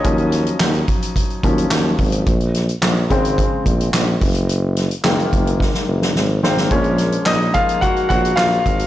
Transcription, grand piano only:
X:1
M:4/4
L:1/8
Q:1/4=108
K:Gblyd
V:1 name="Grand piano"
[Ee]4- [Ee] z3 | z8 | z6 z [Cc] | [Dd]2 [Ee] [Ff] [Gg] [Gg] [Ff]2 |]
V:2 name="Grand piano" clef=bass
[F,G,D]4- [F,G,D] [F,G,D] z2 | z3 [D,A,C]3 z2 | z2 [E,A,B,]3 z2 [E,A,B,] | [F,A,B,]3 [F,A,B,] z4 |]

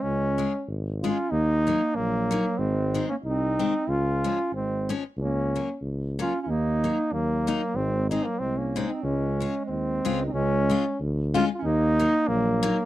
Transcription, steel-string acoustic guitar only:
X:1
M:2/4
L:1/8
Q:"Swing" 1/4=93
K:Db
V:1 name="Steel-string acoustic guitar"
z [A,DF] z [A,DF] | z [G,B,E] z [G,B,E] | z [E,A,C] z [E,A,C] | z [F,A,D] z [F,A,D] |
z [G,B,D] z [G,B,D] | z [G,B,E] z [G,B,E] | z [A,CE] z [A,CE] | z [A,DF] z [A,DF] |
z [A,DF] z [A,DF] | z [G,B,E] z [G,B,E] |]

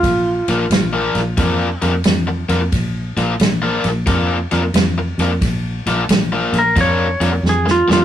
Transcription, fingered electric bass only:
X:1
M:4/4
L:1/8
Q:"Swing" 1/4=89
K:Bb
V:1 name="Fingered electric bass" clef=bass
B,,, B,,, B,,, B,,, F,, F,, F,, F,, | B,,, B,,, B,,, B,,, F,, F,, F,, F,, | B,,, B,,, B,,, B,,, F,, F,, F,, F,, |]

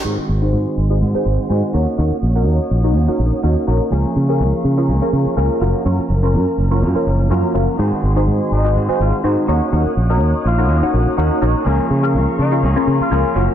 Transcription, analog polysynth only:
X:1
M:4/4
L:1/16
Q:"Swing 16ths" 1/4=124
K:Abmix
V:1 name="Analog polysynth"
[EGAc]2 z [EGAc]4 [EGAc]2 [EGAc]3 [EGAc]2 [EGBd]2 | [EGBd]2 z [EGBd]4 [EGBd]2 [EGBd]3 [EGBd]2 [EGBd]2 | [DFAB]2 z [DFAB]4 [DFAB]2 [DFAB]3 [DFAB]2 [DFGB]2 | [DFGB]2 z [DFB]4 [DFGB]2 [DFB]3 [DFGB]2 [DFGB]2 |
[EGAc]2 z [EGAc]4 [EGAc]2 [EGAc]3 [EGAc]2 [EGBd]2 | [EGBd]2 z [EGBd]4 [EGBd]2 [EGBd]3 [EGBd]2 [EGBd]2 | [DFAB]2 z [DFAB]4 [DFAB]2 [DFAB]3 [DFAB]2 [DFGB]2 |]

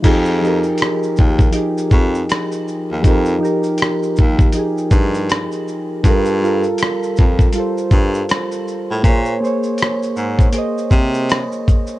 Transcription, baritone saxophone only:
X:1
M:4/4
L:1/16
Q:"Swing 16ths" 1/4=80
K:Fm
V:1 name="Baritone saxophone" clef=bass
F,,4 z2 E,,2 z2 F,,2 z3 E,, | F,,2 z4 E,,2 z2 G,,3 z3 | G,,4 z2 F,,2 z2 G,,2 z3 =A,, | B,,2 z4 A,,2 z2 C,3 z3 |]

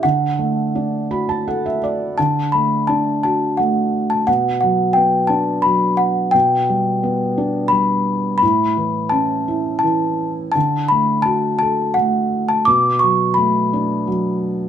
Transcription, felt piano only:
X:1
M:3/4
L:1/16
Q:1/4=86
K:D
V:1 name="Felt piano"
z6 b a f e d2 | z12 | z12 | z12 |
z12 | z12 | z12 |]
V:2 name="Felt piano"
D,2 A,2 D2 F2 A4 | D,2 A,2 D2 F2 A,4 | B,,2 F,2 B,2 D2 F,4 | B,,2 G,2 B,2 D2 G,4 |
A,,2 E,2 C2 E2 E,4 | D,2 A,2 F2 A2 A,4 | B,,2 F,2 A,2 D2 F,4 |]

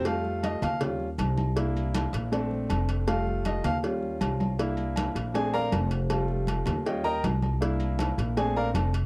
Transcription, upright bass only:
X:1
M:4/4
L:1/8
Q:1/4=159
K:F
V:1 name="Upright bass" clef=bass
F,,3 _E,,3 C,,2- | C,,3 B,,,3 F,,,2- | F,,,3 _E,,3 C,,2- | C,,3 B,,,3 F,,,2- |
F,,,3 _E,,3 C,,2- | C,,3 B,,,3 F,,,2 |]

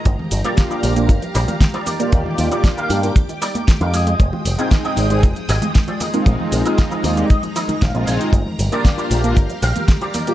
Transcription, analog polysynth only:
X:1
M:4/4
L:1/16
Q:1/4=116
K:Gphr
V:1 name="Analog polysynth"
z3 [B,DFG]4 [B,DFB] z6 z [B,FGd]- | [B,FGd]3 [B,FGd]4 [B,DFB] z8 | z3 [A,CEg]4 [A,CEA] z6 z [A,CEF]- | [A,CEF]3 [A,CEF]4 [A,CEG] z4 z [A,CEF]3 |
z3 [B,DFG]4 [B,DFB] z6 z [B,FGd] |]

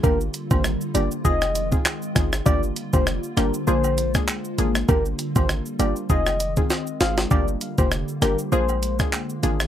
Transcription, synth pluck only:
X:1
M:4/4
L:1/16
Q:"Swing 16ths" 1/4=99
K:Gphr
V:1 name="Synth pluck"
[B,DFG]3 [B,DFG]3 [B,DFG]2 [CEFA] z2 [CEFA] z2 [CEFA] z | [B,DFG]3 [B,DFG]3 [B,DFG]2 [B,DFA] z2 [B,DFA] z2 [B,DFA] z | [B,DFG]3 [B,DFG]3 [B,DFG]2 [CEFA] z2 [CEFA] z2 [CEFA] z | [B,DFG]3 [B,DFG]3 [B,DFG]2 [B,DFA] z2 [B,DFA] z2 [B,DFA] z |]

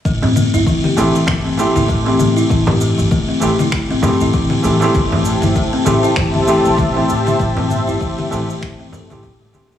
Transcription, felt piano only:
X:1
M:4/4
L:1/16
Q:"Swing 16ths" 1/4=98
K:Am
V:1 name="Felt piano"
z6 [E,A,CG]4 [E,A,CG]3 [E,A,CG]3- | [E,A,CG]6 [E,A,CG] z3 [E,A,CG]4 [E,A,CG] [E,A,CG]- | [E,A,CG]6 [E,A,CG]4 [E,A,CG]3 [E,A,CG]3- | [E,A,CG]6 [E,A,CG] z4 [E,A,CG]3 [E,A,CG]2 |]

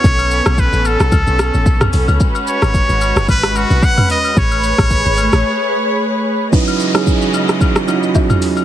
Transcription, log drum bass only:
X:1
M:4/4
L:1/16
Q:"Swing 16ths" 1/4=111
K:C#m
V:1 name="Log drum bass" clef=bass
B,,,3 B,,,2 A,,,2 B,,, C,, B,,,2 A,,, B,,,2 B,,, C,, | z3 G,,,2 G,,,2 F,,, G,,,3 B,,, z4 | A,,,3 A,,,2 G,,,2 A,,, z8 | z16 |]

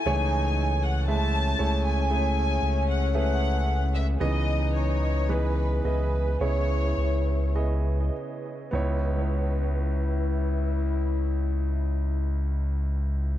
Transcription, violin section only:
X:1
M:4/4
L:1/16
Q:1/4=53
K:C#m
V:1 name="Violin section"
g3 f a3 g4 f f3 e | d2 c2 B2 B2 c4 z4 | z16 |]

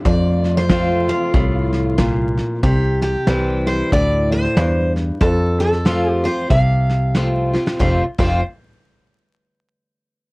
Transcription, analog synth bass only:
X:1
M:4/4
L:1/8
Q:"Swing" 1/4=93
K:F
V:1 name="Analog synth bass" clef=bass
F,,4 C,,4 | C,,2 C,,2 D,,2 E,,2 | F,,4 C,,4 | F,,, F,,, z6 |]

